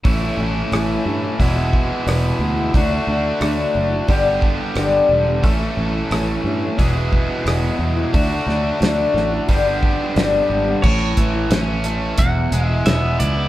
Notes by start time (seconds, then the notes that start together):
0.05 A1 A2 E3 A3 C#4 E4, kick, open hi-hat
0.22 A3 C#4 E4
0.37 A1 E3 A3 C#4 E4
0.71 A1 A2 E3 A3 C#4 E4, cross-stick, open hi-hat
1.04 G2 E3 A3 C#4 E4
1.22 A3 C#4 E4
1.39 E1 E2 B2 E3 G#3 B3 E4, kick, open hi-hat
1.55 E3 G#3 B3 E4
1.73 kick
2.06 E1 E2 B2 E3 G#3 B3 E4, cross-stick, open hi-hat
2.39 D2 E3 G#3 B3 E4
2.56 E3 G#3 B3 E4
2.73 D2 D3 F#3 A3 D4 E4 F#4, kick, open hi-hat
2.89 A3 D4 E4
3.06 D2 F#3 A3 D4 E4
3.40 D2 D3 F#3 A3 D4 E4, cross-stick, open hi-hat
3.73 F#1 F#3 A3 D4 E4
3.90 A3 D4 E4
4.07 G1 G2 D3 G3 B3 D4 G4, kick, open hi-hat
4.24 G3 B3 D4 G4
4.42 kick
4.75 G1 G2 D3 G3 B3 D4 G4, cross-stick, open hi-hat
5.09 E1 G3 B3 D4 G4
5.27 G3 B3 D4 G4
5.43 A1 A2 E3 A3 C#4 E4 A4, kick, open hi-hat
5.60 A3 C#4 E4
5.76 A1 E3 A3 C#4 E4
6.10 A1 A2 E3 A3 C#4 E4, cross-stick, open hi-hat
6.44 G2 E3 A3 C#4 E4
6.61 A3 C#4 E4
6.77 E1 E2 B2 E3 G#3 B3 E4 G#4, kick, open hi-hat
6.95 E3 G#3 B3 E4
7.13 kick
7.45 E1 E2 B2 E3 G#3 B3 E4, cross-stick, open hi-hat
7.79 E2 E3 G#3 B3 E4
7.97 E3 G#3 B3 E4
8.13 D2 D3 F#3 A3 D4 E4 F#4, kick, open hi-hat
8.29 A3 E4
8.46 D2 F#3 A3 D4 E4, snare
8.79 D2 D3 F#3 A3 D4 E4, snare, open hi-hat
9.13 A1 F#3 A3 D4 E4, snare
9.31 A3 D4 E4
9.47 G1 G2 D3 G3 B3 D4 G4, kick, open hi-hat
9.65 G3 B3 D4 G4
9.83 kick
10.15 G1 G2 D3 G3 B3 D4 G4, snare, open hi-hat
10.49 G#1 G3 B3 D4 G4
10.65 G3 B3 D4 G4
10.82 A1 A2 E3 A3 C#4 E4 C#5, kick, crash
11.17 A1 E3, kick, closed hi-hat
11.33 A3 C#4 E4
11.50 A1 A2 E3 A3 C#4 E4, snare, closed hi-hat
11.84 E3 A3 C#4 E4, closed hi-hat
12.18 E1 E2 E3 G#3 B3 E4 F#5, kick, closed hi-hat
12.51 E1 E3 G#3 B3 E4, closed hi-hat
12.67 E3 G#3 B3 E4 E5
12.85 E1 E2 B2 E3 G#3 B3 E4 E5, snare, closed hi-hat
13.18 C#2 E3 G#3 B3 E4 D5, closed hi-hat
13.35 E3 G#3 B3 E4